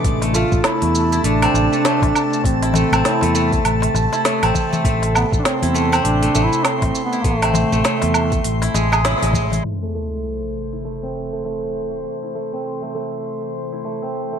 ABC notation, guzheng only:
X:1
M:4/4
L:1/16
Q:"Swing 16ths" 1/4=100
K:Am
V:1 name="Guzheng"
z A, A, z4 E A, C z A, A, z3 | z E A, C z A, A, z4 E A, C z A, | A, z4 E A, C z A, A, z4 E | A, C z A, A, z4 E ^G, ^G E G, G, z |
z A, A, z4 E A, C z A, A, z3 | z E A, C z A, A, z4 E A, C z A, |]